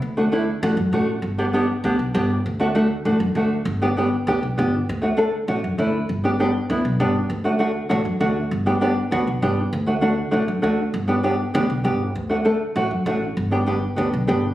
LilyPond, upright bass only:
\new Staff \with { instrumentName = "Upright bass" } { \clef bass \time 4/4 \key g \major \tempo 4 = 198 d,2 a,,8 fis,8 a,,4 | g,,2 d,8 b,,8 g,,4 | d,2 a,,8 fis,8 d,4 | g,,2 d,8 b,,8 g,,4 |
d,2 a,,8 fis,8 d,4 | g,,2 d,8 b,,8 g,,4 | d,2 a,,8 fis,8 d,4 | g,,2 d,8 b,,8 g,,4 |
d,2 a,,8 fis,8 d,4 | g,,2 d,8 b,,8 g,,4 | d,2 a,,8 fis,8 a,,4 | g,,2 d,8 b,,8 g,,4 | }